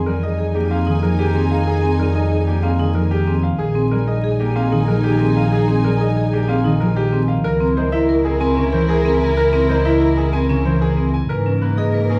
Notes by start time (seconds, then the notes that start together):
Already playing: F2 C4 D#4 G#5
0.06 G3 G#4 A#4
0.23 G#4 D#5
0.39 G#4
0.55 A#3 G4 G#4
0.71 C4 G#4 F5
0.87 D#3 D#4 G#4
1.03 F3 G#4 A#4
1.19 G4 G#4
1.35 C4 G#4
1.51 G#4 F5
1.67 G#4
1.83 C4 G#4
1.99 G3 G#4 A#4
2.15 G#4 D#5
2.31 G#4
2.47 A#3 G4 G#4
2.63 C4 G#4 F5
2.79 D#3 D#4 G#4
2.95 F3 G#4 A#4
3.11 G4 G#4
3.27 C4 G#4
3.43 F5
3.59 A#1 D#4 G#4 G#5
3.75 C4 G#4
3.91 G3 G#4 A#4
4.07 G#4 D#5
4.24 G#4
4.40 A#3 G4 G#4
4.56 C4 G#4 F5
4.72 D#3 D#4 G#4
4.88 F3 G#4 A#4
5.04 G4 G#4
5.20 C4 G#4
5.37 G#4 F5
5.52 G#4
5.68 C4 G#4
5.84 G3 G#4 A#4
6.01 G#4 D#5
6.17 G#4
6.33 A#3 G4 G#4
6.48 C4 G#4 F5
6.64 D#3 D#4 G#4
6.80 F3 G#4 A#4
6.96 G4 G#4
7.13 C4 G#4
7.28 F5
7.44 C#2 E4 A#4
7.61 C4 A#4
7.77 G#3 A#4 C5
7.92 E4 A#4 E5
8.09 A#4
8.25 C4 G#4 A#4
8.40 C4 A#4 G#5
8.57 C#3 C#4 A#4
8.73 E3 A#4 C5
8.89 G#4 A#4
9.05 C4 A#4
9.21 A#4 G#5
9.37 A#4
9.53 C4 A#4
9.69 G#3 A#4 C5
9.85 E4 A#4 E5
10.01 A#4
10.17 C4 G#4 A#4
10.33 C4 A#4 G#5
10.49 C#3 C#4 A#4
10.65 E3 A#4 C5
10.81 G#4 A#4
10.97 C4 A#4
11.14 G#5
11.29 G#2 A#3 A#4 B4
11.46 C#4 B4
11.61 A#3 B4
11.77 G#4 B4 D#5
11.94 B4
12.10 C#4 G#4 B4